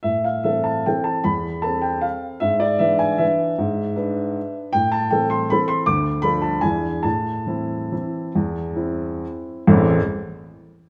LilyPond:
\new Staff \with { instrumentName = "Upright piano" } { \time 3/4 \key a \minor \tempo 4 = 150 << { e''8 f''8 e''8 a''8 g''8 a''8 | b''4 a''8 g''8 f''4 | e''8 d''8 e''8 gis''8 e''4~ | e''2~ e''8 r8 |
g''8 a''8 g''8 c'''8 b''8 c'''8 | d'''4 b''8 a''8 gis''4 | a''2.~ | a''2 r4 |
<a,, e, e a c' e'>8 r2 r8 | } \\ { a,4 <e c' a'>4 <e c' a'>4 | e,4 <c' a'>2 | gis,4 <e d' b'>4 <e d' b'>4 | gis,4 <d' b'>2 |
a,4 <e c' a'>4 <e c' a'>4 | d,4 <f d' a'>4 <e, e d' e'>4 | a,4 <e c' e'>4 <e c' e'>4 | e,4 <c' e'>2 |
r2. | } >> }